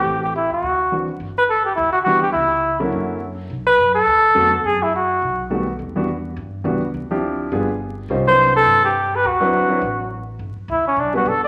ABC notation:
X:1
M:4/4
L:1/8
Q:"Swing" 1/4=209
K:G
V:1 name="Flugelhorn"
G G E F4 z | z B A G E F F G | E4 z4 | z B2 A4- A |
^G E F4 z2 | z8 | z8 | z c2 A2 G2 B |
F6 z2 | z2 E ^C D F A d |]
V:2 name="Grand piano"
[E,A,CG]2 z4 [E,CDF] z | z6 [E,G,B,DG] z | z3 [D,F,_B,^CE]3 z2 | z6 [D,F,A,B,F] z |
z6 [^D,G,A,B,F] z | z [E,G,B,DF] z4 [E,G,B,DF] z | z [=F,CDEG]3 [G,B,D=F_A] z3 | [G,^C_E=F=c] [^F,=CD=EB]4 z3 |
z [F,CDEB]2 [F,CDEB] z4 | z4 z [G,B,DFB] z2 |]
V:3 name="Upright bass" clef=bass
A,,,3 _E,, D,,4 | G,,,4 D,,4 | ^C,,4 F,,4 | B,,,2 F,,2 D,,2 =F,,2 |
F,,4 B,,,4 | E,,4 G,,2 ^C,,2 | D,,4 G,,,4 | C,,4 G,,4 |
D,,4 A,,,4 | G,,, z D,,2 B,,,2 G,,,2 |]